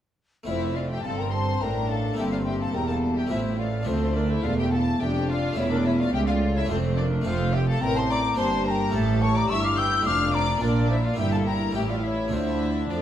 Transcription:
0.43 cello section F2, harpsichord A3 C4 F4, violin section E5
0.47 double bass section F1, harpsichord F2, viola section A3, violin section E4, flute C5 D5
0.75 violin section F4 F5, flute D5
0.90 violin section G4 G5, flute E5
1.03 double bass section G1, cello section G2, harpsichord G2, viola section C4, violin section A4 A5, flute F5
1.18 violin section A#4 A#5, flute G5
1.31 violin section C5 C6, flute A5
1.60 double bass section A1, cello section A2, harpsichord A2, viola section D4, violin section A#4 A#5, flute G5
1.88 violin section A4 A5, flute F5
2.14 harpsichord A#3 C4 E4, violin section G5
2.18 double bass section G1, cello section G2, harpsichord G2, viola section C4, violin section G4, flute E5
2.32 violin section F4 F5, flute D5
2.45 violin section G4 G5, flute E5
2.60 violin section A4 A5, flute F5
2.74 double bass section E1, harpsichord E2, cello section E2, viola section G3, violin section A#4 A#5, flute G5
2.88 violin section A4 A5, flute F5
3.16 violin section G4 G5, flute E5
3.27 harpsichord A3 C4 F4, flute C5, violin section E5
3.31 double bass section A1, cello section A2, harpsichord A2, viola section A3, violin section E4
3.58 violin section F4 F5, flute D5
3.83 harpsichord A3 D4 F4
3.87 double bass section D2, cello section D2, harpsichord D2, violin section C4 C5, flute A4
4.15 violin section D4 D5, flute A#4
4.30 violin section E4 E5, flute C5
4.44 double bass section E1, harpsichord E2, cello section E2, violin section F4 F5, flute D5
4.58 violin section G4 G5, flute E5
4.72 violin section A4 A5, flute G5
4.76 flute F5
5.00 double bass section F1, cello section F2, harpsichord F2, viola section D4, violin section G4 G5, flute E5
5.28 violin section F4 F5, flute D5
5.53 double bass section E1, harpsichord A3 C#4 G4, violin section E4 E5
5.57 cello section E2, harpsichord E2, viola section C#4, flute C#5
5.71 violin section D4 D5, flute A#4
5.85 violin section E4 E5, flute C#5
5.99 violin section F4 F5, flute D5
6.13 cello section C#2, double bass section C#2, harpsichord C#2, viola section A3, violin section G4 G5, flute E5
6.27 violin section F4 F5, flute D5
6.55 violin section E4 E5, flute C#5
6.65 harpsichord A3 D4 F4
6.69 double bass section F1, cello section F2, harpsichord F2, viola section A3, violin section C4 C5, flute A4
6.97 violin section D4 D5, flute A#4
7.22 cello section F2, harpsichord A3 C4 A4
7.26 double bass section F1, harpsichord F2, violin section F4 F5, flute C5
7.53 violin section G4 G5, flute E5
7.68 violin section A4 A5, flute F5
7.81 double bass section A1, cello section A2, harpsichord A2, viola section C4, violin section A#4 A#5, flute G5
7.96 violin section C5 C6, flute A5
8.10 violin section D5 D6, flute A#5
8.33 harpsichord A#3 D4 G4
8.38 double bass section G1, harpsichord G2, cello section G2, viola section G4, violin section C5 C6, flute A5
8.66 violin section A#4 A#5, flute A5
8.71 flute G5
8.89 harpsichord A3 C#4 E4
8.93 double bass section A1, harpsichord A2, cello section A2, violin section A4 A5, flute E5
9.21 violin section C#5 C#6, flute A5
9.35 violin section D5 D6, flute A#5
9.49 double bass section G1, harpsichord G2, cello section G2, viola section E4, violin section E5 E6, flute C#6
9.64 violin section F5 F6, flute D6
9.77 violin section G5 G6, flute E6
10.01 harpsichord A3 D4 F4
10.05 double bass section F1, harpsichord F2, cello section F2, viola section D4, violin section F5 F6, flute D6
10.33 violin section D5 D6, flute A#5
10.57 harpsichord A#3 D4 F4
10.62 double bass section A#1, harpsichord A#2, cello section A#2, viola section D4, violin section D4 D5, flute A#4
10.89 violin section E4 E5, flute C5
11.03 violin section F4 F5, flute D5
11.14 cello section G2, harpsichord A#3 E4 G4, violin section G4
11.18 double bass section G1, harpsichord G2, viola section E4, flute E5, violin section G5
11.32 violin section A4 A5, flute F5
11.46 violin section A#4 A#5, flute G5
11.71 cello section A2, harpsichord A3 C#4 G4, violin section G4
11.75 double bass section A1, harpsichord A2, viola section E4, flute E5, violin section G5
11.89 violin section F4 F5, flute D5
12.03 violin section E4 E5, flute C#5
12.28 harpsichord A3 D4 F4, violin section E4 E5
12.33 double bass section D2, cello section D3, harpsichord D3, viola section D4, flute C5
12.90 double bass section F2, cello section F3, harpsichord F3, violin section D4 D5, flute A4

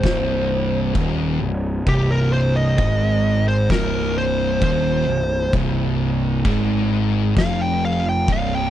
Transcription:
Already playing: lead electric guitar C5
0.03 picked electric bass C1, distorted electric guitar C2, kick, snare, crash
0.95 picked electric bass D#1, distorted electric guitar D#2, kick, crash
1.41 picked electric bass C1, distorted electric guitar C2
1.87 picked electric bass C1, distorted electric guitar C2, lead electric guitar G4, kick, crash
2.11 lead electric guitar A#4
2.33 lead electric guitar C5
2.56 lead electric guitar D#5
2.78 picked electric bass G#1, distorted electric guitar G#2, kick, crash
3.48 lead electric guitar C5
3.70 picked electric bass C1, distorted electric guitar C2, lead electric guitar A#4, kick, snare, crash
4.18 lead electric guitar C5
4.61 picked electric bass D#1, distorted electric guitar D#2, lead electric guitar C5, kick, crash
5.07 picked electric bass C1, distorted electric guitar C2
5.53 picked electric bass C1, distorted electric guitar C2, kick, crash
6.45 picked electric bass G#1, distorted electric guitar G#2, kick, crash
7.36 picked electric bass F1, distorted electric guitar F2, lead electric guitar F5, kick, snare, crash
7.61 lead electric guitar G5
7.85 lead electric guitar F5
8.09 lead electric guitar G5
8.28 picked electric bass C1, distorted electric guitar C2, kick, crash
8.32 lead electric guitar F5
8.55 lead electric guitar G5

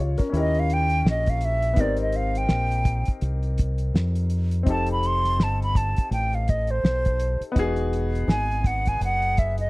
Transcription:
Already playing: fingered electric bass C#2, grand piano F4 C#5
0.18 grand piano C#4 A#4, muted fingered electric bass stroke, kick, closed hi-hat
0.30 fingered electric bass D#2, grand piano C#4 E4
0.34 grand piano G4 A#4, closed hi-hat
0.38 flute D#5
0.55 closed hi-hat
0.59 flute F5
0.70 flute G5, closed hi-hat
0.90 closed hi-hat
1.05 fingered electric bass A#1, snare
1.10 flute D#5
1.26 flute F5, kick, closed hi-hat
1.41 closed hi-hat
1.45 flute E5
1.62 closed hi-hat
1.73 fingered electric bass G#1, grand piano B3 D#4, kick, closed hi-hat
1.78 grand piano C4 G4 A#4, flute D5
1.97 closed hi-hat
2.02 flute D#5
2.12 flute F5, closed hi-hat
2.35 flute G5, closed hi-hat
2.49 fingered electric bass A#1, snare
2.71 closed hi-hat
2.85 kick, closed hi-hat
3.05 kick, closed hi-hat
3.21 fingered electric bass C2, closed hi-hat
3.43 closed hi-hat
3.58 kick, closed hi-hat
3.78 closed hi-hat
3.94 fingered electric bass F2, snare
4.15 closed hi-hat
4.30 closed hi-hat
4.51 closed hi-hat
4.63 fingered electric bass F1, grand piano C4 D#4, kick, closed hi-hat
4.68 grand piano G4 A4, flute A5
4.86 closed hi-hat
4.92 flute B5
5.03 flute C6, closed hi-hat
5.24 snare, closed hi-hat
5.39 fingered electric bass G1, snare
5.43 flute A5
5.62 flute B5, closed hi-hat
5.75 flute A5, kick, closed hi-hat
5.96 muted fingered electric bass stroke, kick, closed hi-hat
6.11 fingered electric bass A1, flute G5, closed hi-hat
6.33 flute F5, closed hi-hat
6.48 flute D#5, kick, closed hi-hat
6.67 flute C5, closed hi-hat
6.83 fingered electric bass B1, snare
7.05 kick, closed hi-hat
7.20 closed hi-hat
7.42 closed hi-hat
7.52 grand piano B3 D#4
7.56 fingered electric bass E1, grand piano F#4 G#4, kick, closed hi-hat
7.76 closed hi-hat
7.93 closed hi-hat
8.15 closed hi-hat
8.28 fingered electric bass G#1, flute G#5, snare
8.51 closed hi-hat
8.64 flute F#5, kick, closed hi-hat
8.86 flute G#5, kick, closed hi-hat
9.00 fingered electric bass F#1, flute F#5, closed hi-hat
9.22 closed hi-hat
9.37 flute E5, kick, closed hi-hat
9.58 flute D#5, closed hi-hat

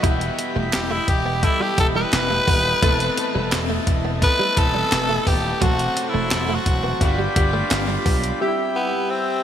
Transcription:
Already playing: overdriven electric guitar B3, harmonium D#5 B5
0.02 slap bass E1, overdriven electric guitar E2 B2 E3, synth keys G3 B3 E4 G4, clean electric guitar E4, harmonium E4 G5, kick, closed hi-hat
0.21 closed hi-hat
0.38 muted clean electric guitar stroke, closed hi-hat
0.56 slap bass E1, clean electric guitar A3
0.73 slap bass E1, tenor saxophone G4, snare, clap, closed hi-hat
0.91 clean electric guitar A3, tenor saxophone E4
1.08 slap bass E1, tenor saxophone G4, muted clean electric guitar stroke, kick, closed hi-hat
1.25 clean electric guitar B3
1.42 overdriven electric guitar E2 B2 E3, synth keys G3 B3 E4 A4, tenor saxophone E4, kick, closed hi-hat
1.60 clean electric guitar G3, tenor saxophone G4
1.77 slap bass E1, overdriven electric guitar B2 E3, synth keys G3 B3 E4 G4, tenor saxophone A4, muted clean electric guitar stroke, kick, closed hi-hat
1.96 clean electric guitar G3, tenor saxophone B4
2.13 slap bass E1, muted clean electric guitar stroke, snare, clap, closed hi-hat
2.30 clean electric guitar A3
2.48 slap bass D#1, clean electric guitar B3, kick, open hi-hat
2.82 slap bass E1, overdriven electric guitar A2 E3 A3, clean electric guitar A3, synth keys B3 C4 E4 A4, harmonium A5, kick, closed hi-hat
3.00 closed hi-hat
3.18 muted clean electric guitar stroke, closed hi-hat
3.35 slap bass E1, clean electric guitar G3
3.52 slap bass E1, snare, clap, closed hi-hat
3.70 clean electric guitar A3
3.87 slap bass E1, muted clean electric guitar stroke, kick, closed hi-hat
4.05 clean electric guitar B3
4.22 overdriven electric guitar A2 E3 A3, synth keys B3 C4 E4 A4, tenor saxophone B4, kick, closed hi-hat
4.39 clean electric guitar G3
4.56 slap bass E1, overdriven electric guitar E3 A3, synth keys B3 C4 E4 B4, tenor saxophone A4, muted clean electric guitar stroke, kick, closed hi-hat
4.74 clean electric guitar G3
4.92 slap bass E1, muted clean electric guitar stroke, snare, clap, closed hi-hat
5.09 clean electric guitar A3
5.26 slap bass D#1, clean electric guitar B3, tenor saxophone G4, kick, open hi-hat
5.61 slap bass E1, overdriven electric guitar F#2 C3 F#3, clean electric guitar F#3, synth keys A3 C4 F#4 A4, harmonium F#4 C5, tenor saxophone F#4, kick, closed hi-hat
5.79 closed hi-hat
5.96 muted clean electric guitar stroke, closed hi-hat
6.02 tenor saxophone F#4
6.09 tenor saxophone E4
6.14 slap bass E1, clean electric guitar A3
6.31 slap bass E1, snare, clap, closed hi-hat
6.49 clean electric guitar A3
6.55 tenor saxophone F#4
6.66 slap bass E1, muted clean electric guitar stroke, kick, closed hi-hat
6.84 clean electric guitar B3
7.00 slap bass G1, overdriven electric guitar G2 D3 G3, synth keys B3 D4 F4 G4, harmonium F4 D5 G5 B5, kick, closed hi-hat
7.19 clean electric guitar G3
7.35 slap bass G1, overdriven electric guitar D3 G3, synth keys B3 D4 F4 G4, muted clean electric guitar stroke, kick, closed hi-hat
7.53 clean electric guitar A3
7.71 slap bass G1, muted clean electric guitar stroke, snare, clap, closed hi-hat
7.88 clean electric guitar G3
8.06 slap bass B1, clean electric guitar B3, kick, open hi-hat
8.24 closed hi-hat
8.41 synth keys G3 C4 D4 G4, harmonium E4 E5 G5
8.48 synth keys E4
8.76 tenor saxophone B3
9.10 tenor saxophone C4

